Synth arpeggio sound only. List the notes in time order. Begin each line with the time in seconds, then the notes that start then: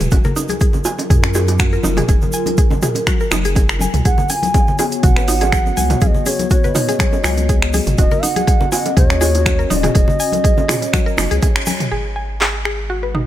0.12 F#4
0.25 A#4
0.36 D#4
0.50 G#4
0.61 G#4
0.86 G#5
1.10 G#4
1.35 G#4
1.60 F#4
1.73 A#4
1.84 D#4
1.98 G#4
2.09 G#4
2.34 G#5
2.58 G#4
2.83 G#4
3.07 F#4
3.21 A#4
3.32 D#4
3.45 G#4
3.56 G#4
3.81 G#5
4.05 G#4
4.30 G#5
4.54 G#4
4.79 G#4
5.03 F#4
5.17 B4
5.28 D#4
5.41 G#4
5.52 G#4
5.77 G#5
6.02 G#4
6.26 G#4
6.51 F#4
6.64 B4
6.76 D#4
6.89 G#4
7.00 G#4
7.25 G#5
7.50 G#4
7.74 G#4
7.99 F#4
8.12 A#4
8.23 D#4
8.36 G#4
8.47 G#4
8.72 G#5
8.97 G#4
9.21 G#4
9.46 F#4
9.59 A#4
9.70 D#4
9.83 G#4
9.95 G#4
10.20 G#5
10.44 G#4
10.68 G#4
10.93 F#4
11.06 A#4
11.18 D#4
11.31 G#4
11.42 G#4
11.67 G#5
11.92 G#4
12.16 G#5
12.41 G#4
12.65 G#4
12.90 F#4
13.03 B4
13.15 D#4